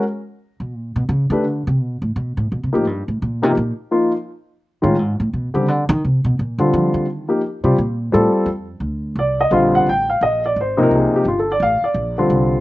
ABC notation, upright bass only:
X:1
M:4/4
L:1/8
Q:"Swing" 1/4=171
K:Bb
V:1 name="Upright bass" clef=bass
z3 =B,, ^A,, B,, _D, ^D, | D, C, =B,, A,, B,, A,, (3B,, C, A,, | G,, A,, B,, C, B,, z3 | z3 A,, ^G,, A,, _C, ^C, |
D, E, C, _C, B,, D, F, E,- | E, z2 C, B,,2 A,, z | F,,2 D,,2 C,,2 B,,,2 | A,,,2 B,,,2 _A,,,2 C,, z |
G,,,2 A,,, z B,,,2 C,,2 |]